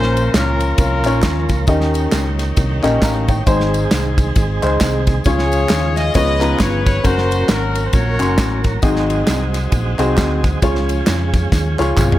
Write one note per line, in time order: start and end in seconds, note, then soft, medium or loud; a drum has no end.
0.00 0.27 A#1 loud
0.00 0.57 A#2 medium
0.00 1.65 F3 medium
0.00 3.42 A#3 medium
0.00 0.45 C#4 medium
0.00 3.43 C#4 medium
0.00 0.33 F4 medium
0.00 0.45 F4 medium
0.00 0.45 A#4 medium
0.00 1.66 A#4 medium
0.00 0.30 C5 loud
0.00 snare soft
0.17 ride bell medium
0.17 tambourine medium
0.33 0.72 C#2 medium
0.33 0.79 C#4 medium
0.33 0.79 F4 medium
0.33 0.78 A#4 loud
0.33 snare loud
0.33 clap loud
0.33 ride bell medium
0.33 tambourine loud
0.60 ride bell medium
0.60 tambourine medium
0.78 1.05 C2 medium
0.78 1.64 C#4 medium
0.78 1.64 F4 medium
0.78 1.46 A#4 loud
0.78 kick loud
0.78 ride bell medium
0.78 tambourine medium
1.04 1.20 A#1 medium
1.04 1.44 C#4 medium
1.04 1.45 F4 medium
1.04 1.45 C#5 medium
1.04 clap medium
1.04 ride bell medium
1.04 tambourine medium
1.23 1.46 D#2 medium
1.23 kick medium
1.23 snare loud
1.23 clap loud
1.23 ride bell medium
1.23 tambourine loud
1.49 1.65 C#2 loud
1.49 kick medium
1.49 ride bell medium
1.49 tambourine medium
1.67 2.06 D#2 loud
1.67 3.44 D#3 medium
1.67 2.35 D#3 medium
1.67 2.23 C#4 medium
1.67 2.23 D#4 medium
1.67 3.44 G4 medium
1.67 2.23 G4 medium
1.67 2.23 A#4 medium
1.67 2.23 D#5 loud
1.67 kick loud
1.67 ride bell medium
1.67 tambourine medium
1.81 snare soft
1.94 ride bell medium
1.94 tambourine medium
2.12 2.51 C#2 loud
2.12 snare loud
2.12 clap loud
2.12 ride bell medium
2.12 tambourine loud
2.39 snare soft
2.39 ride bell medium
2.39 tambourine medium
2.57 2.80 C2 loud
2.57 kick loud
2.57 ride bell medium
2.57 tambourine medium
2.83 2.99 A#1 medium
2.83 3.22 C#4 loud
2.83 3.23 D#4 medium
2.83 3.23 G4 medium
2.83 3.23 A#4 medium
2.83 3.02 D#5 loud
2.83 clap medium
2.83 ride bell medium
2.83 tambourine medium
3.02 3.40 A1 medium
3.02 3.28 F5 medium
3.02 3.27 A#5 medium
3.02 kick loud
3.02 snare loud
3.02 clap loud
3.02 ride bell medium
3.02 tambourine loud
3.28 3.71 C#5 medium
3.28 3.71 G5 medium
3.28 kick medium
3.28 ride bell medium
3.28 tambourine medium
3.46 3.85 G#1 loud
3.46 4.14 G#2 medium
3.46 5.24 D#3 medium
3.46 6.13 G#3 medium
3.46 5.24 C4 medium
3.46 4.01 D#4 medium
3.46 4.02 G#4 medium
3.46 7.01 G#4 medium
3.46 4.02 C5 loud
3.46 kick loud
3.46 ride bell medium
3.46 tambourine medium
3.60 snare soft
3.74 ride bell medium
3.74 tambourine medium
3.91 4.30 C2 loud
3.91 snare loud
3.91 clap medium
3.91 ride bell medium
3.91 tambourine medium
4.18 kick loud
4.18 ride bell medium
4.18 tambourine medium
4.36 4.59 G#1 loud
4.36 kick loud
4.36 ride bell medium
4.36 tambourine medium
4.62 4.78 C#2 medium
4.62 5.01 D#4 medium
4.62 5.02 G#4 medium
4.62 5.02 C5 loud
4.62 clap medium
4.62 ride bell medium
4.62 tambourine medium
4.81 5.19 C2 loud
4.81 kick medium
4.81 snare loud
4.81 clap loud
4.81 ride bell medium
4.81 tambourine loud
5.07 kick loud
5.07 ride bell medium
5.07 tambourine medium
5.24 5.64 C#2 loud
5.24 5.93 C#3 medium
5.24 7.02 F3 medium
5.24 8.79 C#4 medium
5.24 5.81 F4 medium
5.24 6.11 F4 medium
5.24 5.81 G#4 medium
5.24 6.11 G#4 medium
5.24 5.93 C#5 loud
5.24 5.81 C#5 medium
5.24 kick loud
5.24 ride bell medium
5.24 tambourine medium
5.39 snare soft
5.52 ride bell medium
5.52 tambourine medium
5.69 6.09 D#2 loud
5.69 snare loud
5.69 clap loud
5.69 ride bell medium
5.69 tambourine loud
5.96 6.14 D#5 loud
5.96 snare soft
5.96 ride bell medium
5.96 tambourine medium
6.14 6.53 C#2 loud
6.14 6.82 C#3 medium
6.14 6.36 B3 medium
6.14 7.04 B3 medium
6.14 6.36 C#4 medium
6.14 6.36 F4 medium
6.14 6.36 G#4 medium
6.14 7.01 G#4 loud
6.14 7.01 B4 loud
6.14 6.36 C#5 medium
6.14 6.57 D#5 loud
6.14 kick loud
6.14 ride bell medium
6.14 tambourine medium
6.40 6.80 B3 medium
6.40 6.80 C#4 medium
6.40 6.80 F4 medium
6.40 6.80 G#4 medium
6.40 6.80 A#5 medium
6.40 clap medium
6.40 ride bell medium
6.40 tambourine medium
6.60 6.98 G1 loud
6.60 6.84 C#5 loud
6.60 kick medium
6.60 snare loud
6.60 clap loud
6.60 ride bell medium
6.60 tambourine loud
6.85 7.03 C#5 loud
6.85 kick loud
6.85 ride bell medium
6.85 tambourine medium
7.03 7.43 F#1 loud
7.03 10.60 F#3 medium
7.03 8.82 A#3 medium
7.03 7.59 C#4 medium
7.03 7.59 F#4 medium
7.03 7.50 F#4 medium
7.03 7.59 A#4 medium
7.03 8.82 A#4 medium
7.03 7.49 C5 loud
7.03 kick loud
7.03 ride bell medium
7.03 tambourine medium
7.18 snare soft
7.31 ride bell medium
7.31 tambourine medium
7.49 7.87 G#1 medium
7.49 8.36 C#4 medium
7.49 7.93 F#4 medium
7.49 7.86 A#4 medium
7.49 snare loud
7.49 clap loud
7.49 ride bell medium
7.49 tambourine loud
7.75 ride bell medium
7.75 tambourine medium
7.85 7.93 C5 medium
7.93 8.16 A#1 loud
7.93 8.80 F#4 medium
7.93 8.80 A#4 medium
7.93 8.65 C#5 loud
7.93 kick loud
7.93 ride bell medium
7.93 tambourine medium
8.19 8.36 F#1 medium
8.19 8.59 C#4 medium
8.19 8.59 F#4 medium
8.19 8.60 C6 medium
8.19 clap medium
8.19 ride bell medium
8.19 tambourine medium
8.38 8.77 A1 loud
8.38 kick loud
8.38 snare loud
8.38 clap loud
8.38 ride bell medium
8.38 tambourine loud
8.64 kick medium
8.64 ride bell medium
8.64 tambourine soft
8.82 9.21 G#1 loud
8.82 9.50 G#2 medium
8.82 9.38 C4 medium
8.82 10.60 C4 medium
8.82 10.60 D#4 medium
8.82 9.38 D#4 medium
8.82 9.38 F#4 medium
8.82 12.19 G#4 medium
8.82 9.38 G#4 medium
8.82 9.38 D#5 medium
8.82 kick loud
8.82 ride bell medium
8.82 tambourine medium
8.96 snare soft
9.10 ride bell medium
9.10 tambourine medium
9.27 9.66 C2 loud
9.27 snare loud
9.27 clap loud
9.27 ride bell medium
9.27 tambourine loud
9.54 snare soft
9.54 ride bell medium
9.54 tambourine medium
9.72 9.95 A#1 loud
9.72 kick loud
9.72 ride bell medium
9.72 tambourine medium
9.99 10.15 C2 loud
9.99 10.38 C4 loud
9.99 10.38 D#4 medium
9.99 10.38 F#4 medium
9.99 10.39 G#4 medium
9.99 10.38 C5 loud
9.99 clap medium
9.99 ride bell medium
9.99 tambourine medium
10.18 10.56 D2 medium
10.18 kick medium
10.18 snare loud
10.18 clap loud
10.18 ride bell medium
10.18 tambourine loud
10.44 kick loud
10.44 ride bell medium
10.44 tambourine medium
10.62 11.01 C#2 loud
10.62 11.30 C#3 medium
10.62 12.19 F3 medium
10.62 12.19 G#3 medium
10.62 12.19 C#4 medium
10.62 11.18 F4 medium
10.62 11.18 G#4 medium
10.62 11.18 C#5 medium
10.62 kick loud
10.62 ride bell medium
10.62 tambourine medium
10.75 snare soft
10.89 ride bell medium
10.89 tambourine medium
11.07 11.46 F2 medium
11.07 snare loud
11.07 clap loud
11.07 ride bell medium
11.07 tambourine loud
11.34 kick loud
11.34 ride bell medium
11.34 tambourine medium
11.52 11.75 D#2 loud
11.52 kick loud
11.52 snare medium
11.52 tambourine medium
11.79 11.94 C#2 loud
11.79 12.18 F4 medium
11.79 12.18 G#4 medium
11.79 12.18 C#5 loud
11.79 clap medium
11.79 tambourine medium
11.97 12.19 C2 medium
11.97 kick medium
11.97 clap loud
11.97 mid tom medium
11.97 tambourine loud
12.12 floor tom loud